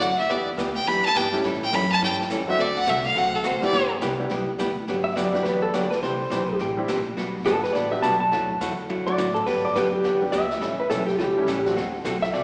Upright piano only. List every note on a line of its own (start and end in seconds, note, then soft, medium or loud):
1.32 1.42 G3 medium
1.32 1.42 A3 medium
1.32 1.43 C#4 medium
1.32 1.43 E4 medium
1.32 1.43 G4 medium
2.46 2.57 F#3 medium
2.46 2.57 A3 medium
2.46 2.57 C4 medium
2.46 2.57 D4 medium
2.46 2.58 F#4 medium
3.61 3.71 G3 medium
3.61 3.72 B3 medium
3.61 3.72 D4 medium
3.61 3.72 E4 medium
3.61 3.72 G4 medium
4.18 4.28 G3 medium
4.18 4.29 B3 medium
4.18 4.29 D4 medium
4.18 4.29 E4 medium
4.18 4.30 G4 medium
5.33 5.43 G3 medium
5.33 5.44 B3 medium
5.33 5.44 D4 medium
5.33 5.44 F#4 medium
5.33 5.44 G4 medium
6.77 6.87 G3 medium
6.77 6.87 C4 medium
6.77 6.87 D4 medium
6.77 6.87 E4 medium
6.77 6.88 G4 medium
7.91 8.01 G3 medium
7.91 8.02 B3 medium
7.91 8.02 D4 medium
7.91 8.02 F#4 medium
7.91 8.02 G4 medium
9.06 9.16 F#3 medium
9.06 9.17 A3 medium
9.06 9.17 D4 medium
9.06 9.17 E4 medium
9.06 9.17 F#4 medium
10.21 10.31 G3 medium
10.21 10.31 B3 medium
10.21 10.32 D4 medium
10.21 10.32 F#4 medium
10.21 10.32 G4 medium
11.37 11.46 G3 medium
11.37 11.47 A3 medium
11.37 11.47 C#4 medium
11.37 11.47 E4 medium
11.37 11.47 G4 medium
11.65 11.75 F#3 medium
11.65 11.75 A3 medium
11.65 11.75 C4 medium
11.65 11.75 D4 medium
11.65 11.76 F#4 medium